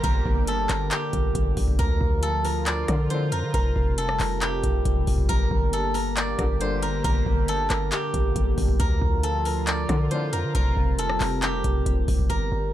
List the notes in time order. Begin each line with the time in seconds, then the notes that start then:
Already playing: D3 G3 A#3 G4 C5 D5
0.04 G1 A#4, kick, closed hi-hat
0.26 G1, kick
0.47 A4, closed hi-hat
0.69 G1 A#4, cross-stick, clap, closed hi-hat
0.91 G4, clap, closed hi-hat
1.13 G1, kick, closed hi-hat
1.35 G1, kick, closed hi-hat
1.57 G1, kick, open hi-hat
1.68 kick
1.79 D2 F3 F4 A#4, kick, closed hi-hat
2.01 D2, kick
2.23 A4, closed hi-hat
2.45 A#4, open hi-hat
2.66 D5, clap, closed hi-hat
2.88 F2 A2 D3, kick, cross-stick, closed hi-hat
3.10 F2 A2 D3 C5, closed hi-hat
3.32 F2 A#4, closed hi-hat
3.43 D3
3.54 F1 C3 G3 A#4, kick, closed hi-hat
3.76 F1, kick
3.98 A4, closed hi-hat
4.09 cross-stick
4.20 F1 A#4, clap, open hi-hat
4.42 G4, clap, closed hi-hat
4.64 F1, kick, closed hi-hat
4.85 F1, kick, closed hi-hat
5.07 F1, kick, open hi-hat
5.18 kick
5.29 G1 D3 A#3 G4 A#4, kick, closed hi-hat
5.51 G1, kick
5.73 A4, closed hi-hat
5.94 A#4, open hi-hat
6.16 D5, clap, closed hi-hat
6.39 G1 G2 A#2 D3, kick, cross-stick, closed hi-hat
6.61 G2 A#2 D3 C5, closed hi-hat
6.82 A#4, closed hi-hat
7.04 G1 A#4, kick, closed hi-hat
7.26 G1, kick
7.48 A4, closed hi-hat
7.70 G1 A#4, cross-stick, clap, closed hi-hat
7.91 G4, clap, closed hi-hat
8.14 G1, kick, closed hi-hat
8.36 G1, kick, closed hi-hat
8.58 G1, kick, open hi-hat
8.69 kick
8.80 D2 F3 F4 A#4, kick, closed hi-hat
9.02 D2, kick
9.23 A4, closed hi-hat
9.45 A#4, open hi-hat
9.67 D5, clap, closed hi-hat
9.89 F2 A2 D3, kick, cross-stick, closed hi-hat
10.11 F2 A2 D3 C5, closed hi-hat
10.33 F2 A#4, closed hi-hat
10.44 D3
10.55 F1 C3 G3 C4 A#4, kick, closed hi-hat
10.77 F1, kick
10.99 A4, closed hi-hat
11.09 cross-stick
11.20 F1 A#4, clap, open hi-hat
11.42 G4, clap, closed hi-hat
11.64 F1, kick, closed hi-hat
11.86 F1, kick, closed hi-hat
12.08 F1, kick, open hi-hat
12.19 kick
12.30 G1 D3 G3 A#3 G4 A#4, closed hi-hat
12.52 G1